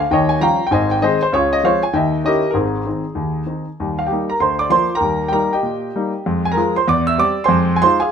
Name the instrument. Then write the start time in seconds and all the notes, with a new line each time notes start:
grand piano
0.11 D#2 D#3 C#5 D#5 G5
0.29 G#5
0.41 F3 G3 C#4 F5 G5 A#5
0.67 G5
0.71 G#1 G#2 C5 D#5 G#5
0.91 G5
1.02 D#3 G#3 C4 G#4 C5 D#5
1.23 C5
1.32 C#2 C#3 F4 G#4 C#5
1.53 D#5
1.64 F3 G#3 C4 C5 C#5 F5
1.83 G#5
1.93 D#2 D#3 D#5 E5 G5
2.25 D#3 C#4 E4 G4 A#4 D#5
2.51 G#1 G#2 A#4
2.55 C4 D#4 G#4
2.86 D#3 C4 D#4
3.15 D#2 D#3
3.46 D#3 C4 D#4
3.80 D#2 G3
3.99 F5
4.07 G4 G5
4.11 G3 A#3 D#4
4.30 A#4 A#5
4.40 D2 C5 C6
4.59 D5 D6
4.70 F3 A#3 F4 C5 C6
4.95 A#4 G5 A#5
5.00 D#2 G3
5.28 G3 A#3 G5
5.33 D#4 A#4 A#5
5.53 G4 D#5 G5
5.63 A#2
5.96 G3 A#3 D#4
6.26 F2 G#3
6.45 G#5
6.52 A#4 A#5
6.57 F3 G#3 G#4
6.76 C5 C6
6.88 E2 D5 D6
7.07 E5 E6
7.18 G3 C4 G4 D5 D6
7.44 C5 G#5 C6
7.49 F2 G#3
7.76 G#5
7.82 G#3 D#4 F4 C5 C6
8.00 G#4 F5 G#5